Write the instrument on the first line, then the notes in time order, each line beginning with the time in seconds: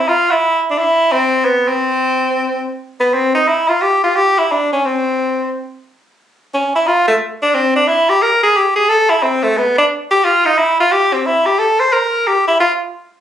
tenor saxophone
0.08 F4
0.31 E4
0.71 D4
0.78 E4
1.12 C4
1.44 B3
1.68 C4
3.00 B3
3.14 C4
3.35 D#4
3.48 E4
3.68 F4
3.82 G4
4.04 F4
4.16 G4
4.38 E4
4.51 D4
4.72 C#4
4.85 C4
6.54 C#4
6.75 E4
6.87 F4
7.08 A3
7.42 D4
7.54 C4
7.76 D4
7.88 E4
8.09 G4
8.22 A#4
8.43 G#4
8.56 G4
8.75 G#4
8.89 A4
9.10 E4
9.23 C4
9.43 A3
9.57 B3
9.78 D4
10.11 G4
10.24 F4
10.45 D#4
10.58 E4
10.80 F4
10.92 G4
11.13 C4
11.26 E4
11.46 G4
11.58 A4
11.80 C5
11.92 A#4
12.27 G4
12.47 E4
12.60 F4